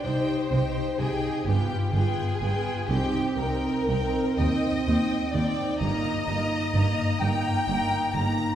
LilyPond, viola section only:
\new Staff \with { instrumentName = "Viola section" } { \time 6/8 \key c \minor \tempo 4. = 42 <ees' g'>8 <ees' g'>8 <ees' g'>8 <b f'>8 <b f'>8 <b f'>8 | <c' ees'>8 <c' ees'>8 <c' ees'>8 <c' ees'>8 <c' ees'>8 <c' ees'>8 | \key dis \phrygian <ais dis'>8 <ais dis'>8 <ais dis'>8 <ais dis'>8 <ais dis'>8 <ais dis'>8 | }